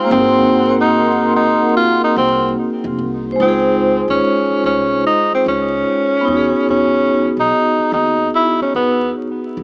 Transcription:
0.04 vibraphone A#3 C4
0.10 upright bass G#1, tenor saxophone C4, vibraphone D#4, analog synth pad A#4 F#5 C6
0.16 vibraphone F#4 G#4
0.81 tenor saxophone D#4
1.36 tenor saxophone D#4
1.77 tenor saxophone F4
2.04 tenor saxophone D#4
2.16 upright bass C2, tenor saxophone C4
2.84 upright bass F1
2.99 upright bass C2
3.32 vibraphone G#3 C5
3.40 upright bass C#2, tenor saxophone C4, vibraphone D#4 F4
3.48 vibraphone G#4
4.08 upright bass D#2, tenor saxophone C#4
4.49 muted upright bass stroke
4.64 upright bass C2, tenor saxophone C#4
5.07 tenor saxophone D#4
5.32 tenor saxophone C4, muted upright bass stroke
5.46 upright bass C#2, tenor saxophone C#4
6.21 vibraphone B3 D#4
6.28 upright bass E2
6.33 vibraphone F#4
6.37 vibraphone G#4
6.69 upright bass E2, tenor saxophone C#4
7.37 upright bass B1, tenor saxophone D#4
7.78 muted upright bass stroke
7.92 upright bass D#2, tenor saxophone D#4
8.35 tenor saxophone E4
8.61 tenor saxophone C#4, muted upright bass stroke
8.75 upright bass E2, tenor saxophone B3
9.57 upright bass C2

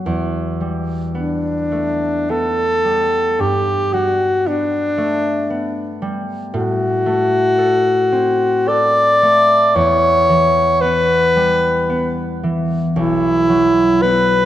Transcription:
Already playing: harp F#2 F#3 A3 B3
0.06 harp E2
0.61 harp G3
1.15 harp B3, alto saxophone D4
1.72 harp A3
2.30 harp B3, alto saxophone A4
2.85 harp G3
3.39 harp G2, alto saxophone G4
3.93 harp G3, alto saxophone F#4
4.46 harp B3, alto saxophone D4
4.98 harp A3
5.50 harp B3
6.02 harp G3
6.54 harp A2, alto saxophone F#4
7.06 harp A3
7.58 harp A4
8.12 harp C4
8.68 harp A4, alto saxophone D5
9.23 harp A3
9.75 harp E2, alto saxophone C#5
10.29 harp E3
10.81 harp B3, alto saxophone B4
11.36 harp G3
11.90 harp B3
12.43 harp E3
12.96 harp B1, alto saxophone E4
13.49 harp F#3
14.02 harp B3, alto saxophone B4

